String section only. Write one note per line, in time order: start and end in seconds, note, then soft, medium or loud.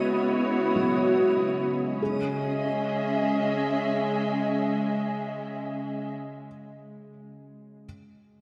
0.00 2.00 B3 medium
0.00 2.00 E4 medium
0.00 1.99 F#4 medium
0.00 2.00 C#5 medium
2.01 6.10 C#4 medium
2.14 6.10 G#4 medium
2.24 6.09 D#5 medium
2.39 6.10 E5 medium